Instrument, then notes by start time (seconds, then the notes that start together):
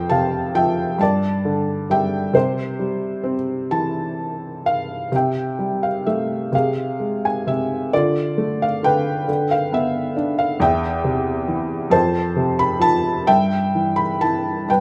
felt piano
Already playing: F2 C5 G5
0.09 C3 F5 A5
0.55 F3 E5 G5
0.98 G2 A5
1.02 D5
1.45 D3
1.90 G3 E5 G5
2.33 C3 G4 C5
2.79 G3
3.24 C4
3.71 E3 A5
4.66 F5
5.12 C3 G5
5.16 E5
5.59 G3
5.83 F5
6.06 A3 E5
6.52 C3 G#4 F5
7.00 G#3
7.25 G#5
7.47 C3 E5
7.93 D3 F4 D5
8.38 A3
8.62 F5
8.83 D3 B4 G5
9.28 D3
9.51 F5
9.73 B3 E5
10.16 D4
10.39 F5
10.60 E2 E5 G5
11.04 C3
11.48 E3
11.90 F2 C5 A5
12.36 C3
12.59 B5
12.79 F3 A5
13.27 G2 E5 G5
13.75 E3
13.96 B5
14.21 E4 A5
14.68 G2 B4 G5